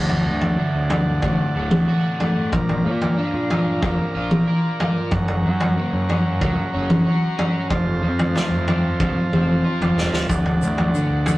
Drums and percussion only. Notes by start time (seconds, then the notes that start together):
0.09 floor tom
0.41 floor tom
0.90 floor tom
1.22 kick, floor tom
1.71 mid tom
2.20 floor tom
2.52 kick, floor tom
2.69 floor tom
3.02 floor tom
3.50 floor tom
3.82 kick, floor tom
4.31 mid tom
4.80 floor tom
5.11 kick, floor tom
5.28 floor tom
5.60 floor tom
6.10 floor tom
6.41 kick, floor tom
6.90 mid tom
7.39 floor tom
7.70 kick, floor tom
8.19 floor tom
8.35 snare, floor tom
8.68 floor tom
9.00 kick, floor tom
9.33 mid tom
9.82 floor tom
9.98 snare
10.13 snare
10.29 kick, floor tom, shaker
10.45 floor tom
10.62 shaker
10.78 floor tom
10.95 shaker
11.26 floor tom, shaker